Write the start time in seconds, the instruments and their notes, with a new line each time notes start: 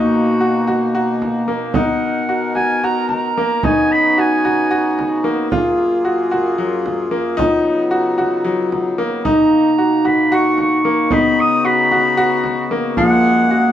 Already playing: harmonium B2 A#3 D#4, vibraphone A#3, grand piano D#4, clarinet F#4
0.15 frame drum
0.41 grand piano F#4
0.67 grand piano F#4, frame drum
0.95 grand piano F#4
1.22 frame drum
1.48 grand piano A#3, frame drum
1.74 harmonium B2 D#4 A#4, vibraphone B3, grand piano D#4, clarinet F#5, frame drum
2.02 frame drum
2.29 grand piano F#4
2.55 grand piano F#4, clarinet G#5, frame drum
2.83 grand piano F#4, clarinet A#5, frame drum
3.09 clarinet A#5, frame drum
3.38 grand piano A#3
3.63 harmonium C#3 B3 F#4, vibraphone D#4, grand piano D#4, clarinet G#5, frame drum
3.91 clarinet B5, frame drum
4.18 grand piano F#4, clarinet G#5
4.45 grand piano F#4, frame drum
4.71 grand piano F#4, frame drum
4.99 frame drum
5.24 grand piano A#3
5.51 harmonium F#2 A#3 F4 G#4, vibraphone F4, grand piano F4, frame drum
5.79 frame drum
6.05 grand piano F#4
6.31 grand piano F#4, frame drum
6.58 grand piano F#3, frame drum
6.86 frame drum
7.11 grand piano A#3
7.37 harmonium C#3 F#3 B3 D#4, grand piano D#4, vibraphone F4, frame drum
7.67 frame drum
7.91 grand piano F#4
8.18 grand piano F#4, frame drum
8.44 grand piano F#3
8.72 frame drum
8.98 grand piano A#3
9.25 harmonium B2 A#3, vibraphone D#4, grand piano D#4, clarinet A#5, frame drum
9.52 frame drum
9.78 grand piano F#4
10.05 grand piano F#4, clarinet B5, frame drum
10.32 grand piano F#4, clarinet C#6, frame drum
10.58 clarinet C#6, frame drum
10.85 grand piano A#3
11.11 harmonium C#3 B3 F#4, vibraphone B3, grand piano D#4, clarinet B5, frame drum
11.38 clarinet D#6, frame drum
11.65 grand piano F#4, clarinet B5
11.92 grand piano F#4, frame drum
12.17 grand piano F#4, frame drum
12.44 frame drum
12.71 grand piano A#3
12.97 harmonium F#2 G#3 A#3 G#4, grand piano F3, vibraphone A#3, clarinet F#5, frame drum
13.24 frame drum
13.51 grand piano F#4